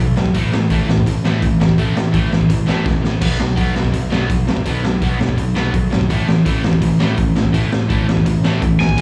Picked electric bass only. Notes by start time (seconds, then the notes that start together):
0.00 B1
0.17 B1
0.34 A1
0.52 A1
0.70 A1
0.88 A1
1.06 A1
1.25 A1
1.42 A1
1.60 A1
1.78 A1
1.95 A1
2.14 A1
2.31 A1
2.50 A1
2.67 A1
2.86 A1
3.03 A1
3.22 B1
3.39 B1
3.58 B1
3.76 B1
3.94 B1
4.12 B1
4.30 B1
4.47 B1
4.66 B1
4.83 B1
5.02 B1
5.19 B1
5.38 B1
5.55 B1
5.74 B1
5.91 G#1
6.10 A1
6.28 A1
6.46 A1
6.64 A1
6.82 A1
7.01 A1
7.18 A1
7.36 A1
7.54 A1
7.71 A1
7.90 A1
8.07 A1
8.26 A1
8.43 A1
8.62 A1
8.79 D#2
8.98 E1